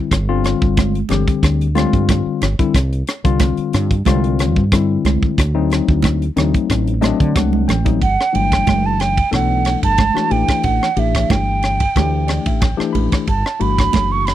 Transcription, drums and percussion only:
0.11 kick medium
0.11 cross-stick medium
0.11 closed hi-hat medium
0.11 muted conga soft
0.44 cross-stick medium
0.44 closed hi-hat medium
0.44 muted conga soft
0.62 kick medium
0.77 kick loud
0.77 cross-stick medium
0.77 closed hi-hat medium
0.77 high conga medium
0.95 closed hi-hat soft
1.09 cross-stick medium
1.09 closed hi-hat medium
1.09 low conga medium
1.28 kick medium
1.28 closed hi-hat soft
1.43 kick medium
1.43 cross-stick medium
1.43 closed hi-hat medium
1.43 muted conga soft
1.61 closed hi-hat soft
1.75 cross-stick medium
1.75 closed hi-hat medium
1.75 high conga medium
1.93 kick medium
1.93 closed hi-hat soft
2.09 kick loud
2.09 cross-stick medium
2.09 closed hi-hat medium
2.09 muted conga soft
2.09 high conga medium
2.42 cross-stick medium
2.42 closed hi-hat medium
2.42 low conga medium
2.59 kick medium
2.59 closed hi-hat soft
2.74 kick medium
2.74 cross-stick medium
2.74 closed hi-hat medium
2.74 muted conga soft
2.93 closed hi-hat soft
3.07 cross-stick medium
3.07 closed hi-hat medium
3.07 muted conga soft
3.25 kick medium
3.25 closed hi-hat soft
3.40 kick loud
3.40 cross-stick medium
3.40 closed hi-hat medium
3.40 high conga medium
3.57 closed hi-hat soft
3.73 cross-stick medium
3.73 closed hi-hat medium
3.91 kick medium
3.91 closed hi-hat soft
4.05 kick medium
4.05 cross-stick medium
4.05 closed hi-hat medium
4.05 muted conga soft
4.05 high conga medium
4.24 closed hi-hat soft
4.39 cross-stick medium
4.39 closed hi-hat medium
4.56 kick medium
4.72 kick loud
4.72 cross-stick medium
4.72 closed hi-hat medium
4.72 muted conga soft
5.05 cross-stick medium
5.05 closed hi-hat medium
5.05 high conga medium
5.23 kick medium
5.38 kick medium
5.38 cross-stick medium
5.38 closed hi-hat medium
5.38 muted conga soft
5.70 cross-stick medium
5.70 closed hi-hat medium
5.70 muted conga soft
5.88 kick medium
6.02 kick medium
6.02 cross-stick medium
6.02 closed hi-hat medium
6.02 high conga medium
6.22 closed hi-hat soft
6.37 cross-stick medium
6.37 closed hi-hat medium
6.37 low conga medium
6.54 kick medium
6.54 closed hi-hat soft
6.69 kick medium
6.69 cross-stick medium
6.69 closed hi-hat medium
6.69 muted conga soft
6.87 closed hi-hat soft
7.02 cross-stick medium
7.02 closed hi-hat medium
7.02 high conga medium
7.20 kick medium
7.20 closed hi-hat soft
7.35 kick loud
7.35 cross-stick medium
7.35 closed hi-hat medium
7.35 high conga medium
7.53 high conga medium
7.69 cross-stick medium
7.69 closed hi-hat medium
7.69 low conga medium
7.86 kick medium
7.86 closed hi-hat soft
7.86 low conga medium
8.02 kick medium
8.02 ride soft
8.02 muted conga soft
8.21 cross-stick medium
8.35 ride medium
8.52 kick medium
8.52 cross-stick medium
8.52 ride medium
8.67 kick medium
8.67 cross-stick medium
8.67 ride medium
8.67 muted conga soft
8.67 high conga medium
9.00 cross-stick medium
9.00 ride medium
9.17 kick medium
9.17 ride medium
9.33 kick medium
9.33 cross-stick medium
9.33 ride medium
9.33 muted conga soft
9.65 cross-stick medium
9.65 ride medium
9.65 muted conga soft
9.83 kick medium
9.83 ride medium
9.98 kick loud
9.98 cross-stick medium
9.98 ride medium
9.98 high conga medium
10.17 cross-stick medium
10.31 ride medium
10.48 kick medium
10.48 cross-stick medium
10.48 ride medium
10.63 kick medium
10.63 ride medium
10.63 muted conga soft
10.83 cross-stick medium
10.97 ride medium
11.15 kick medium
11.15 cross-stick medium
11.15 ride medium
11.30 kick medium
11.30 cross-stick medium
11.30 ride soft
11.30 muted conga soft
11.30 high conga medium
11.63 cross-stick medium
11.63 ride medium
11.80 kick medium
11.80 ride medium
11.96 kick medium
11.96 cross-stick medium
11.96 ride soft
11.96 muted conga soft
11.96 high conga medium
12.28 cross-stick medium
12.28 ride medium
12.28 muted conga soft
12.46 kick medium
12.46 ride medium
12.61 kick loud
12.61 cross-stick medium
12.61 ride medium
12.61 low conga medium
12.80 cross-stick medium
12.95 ride medium
12.95 high conga medium
12.95 low conga medium
13.12 kick medium
13.12 cross-stick medium
13.12 ride medium
13.27 kick medium
13.27 ride soft
13.27 muted conga soft
13.46 cross-stick medium
13.61 ride medium
13.78 kick medium
13.78 cross-stick medium
13.78 ride medium
13.93 kick medium
13.93 cross-stick medium
13.93 ride medium
13.93 muted conga soft
13.93 high conga medium
14.27 cross-stick medium
14.27 ride medium

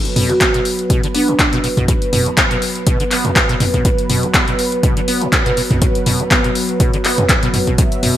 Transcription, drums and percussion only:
0.05 closed hi-hat soft
0.16 mid tom loud
0.16 open hi-hat loud
0.30 closed hi-hat soft
0.41 kick loud
0.41 clap loud
0.41 closed hi-hat loud
0.54 closed hi-hat soft
0.65 open hi-hat loud
0.79 closed hi-hat soft
0.90 kick loud
0.90 closed hi-hat loud
1.03 closed hi-hat soft
1.15 open hi-hat loud
1.28 closed hi-hat soft
1.39 kick loud
1.39 clap loud
1.39 closed hi-hat medium
1.53 closed hi-hat soft
1.64 open hi-hat loud
1.77 kick medium
1.77 closed hi-hat soft
1.77 mid tom medium
1.88 kick loud
1.88 closed hi-hat medium
2.02 closed hi-hat soft
2.13 mid tom loud
2.13 open hi-hat loud
2.26 closed hi-hat soft
2.37 kick loud
2.37 clap loud
2.37 closed hi-hat medium
2.51 closed hi-hat soft
2.62 open hi-hat loud
2.75 closed hi-hat soft
2.87 kick loud
2.87 closed hi-hat medium
3.00 closed hi-hat soft
3.11 clap medium
3.11 open hi-hat loud
3.25 closed hi-hat soft
3.25 mid tom loud
3.36 kick loud
3.36 clap loud
3.36 closed hi-hat medium
3.49 closed hi-hat soft
3.60 mid tom medium
3.60 open hi-hat loud
3.74 kick medium
3.74 closed hi-hat soft
3.85 kick loud
3.85 closed hi-hat medium
3.98 closed hi-hat soft
4.10 mid tom medium
4.10 open hi-hat loud
4.23 closed hi-hat soft
4.34 kick loud
4.34 clap loud
4.34 closed hi-hat medium
4.48 closed hi-hat soft
4.59 open hi-hat loud
4.72 closed hi-hat soft
4.83 kick loud
4.83 closed hi-hat medium
4.97 closed hi-hat soft
5.08 open hi-hat loud
5.21 closed hi-hat soft
5.32 kick loud
5.32 clap loud
5.32 closed hi-hat medium
5.46 closed hi-hat soft
5.57 open hi-hat loud
5.71 kick medium
5.71 closed hi-hat soft
5.71 mid tom medium
5.82 kick loud
5.82 closed hi-hat medium
5.95 closed hi-hat soft
6.06 mid tom medium
6.06 open hi-hat loud
6.20 closed hi-hat soft
6.31 kick loud
6.31 clap loud
6.31 closed hi-hat medium
6.44 closed hi-hat soft
6.55 open hi-hat loud
6.69 closed hi-hat soft
6.80 kick loud
6.80 closed hi-hat medium
6.94 closed hi-hat soft
7.05 clap medium
7.05 open hi-hat loud
7.18 closed hi-hat soft
7.18 mid tom medium
7.29 kick loud
7.29 clap loud
7.29 closed hi-hat medium
7.43 closed hi-hat soft
7.54 mid tom medium
7.54 open hi-hat loud
7.67 kick medium
7.67 closed hi-hat soft
7.78 kick loud
7.78 closed hi-hat medium
7.78 shaker medium
7.92 closed hi-hat soft
7.92 shaker soft
8.03 mid tom medium
8.03 open hi-hat loud

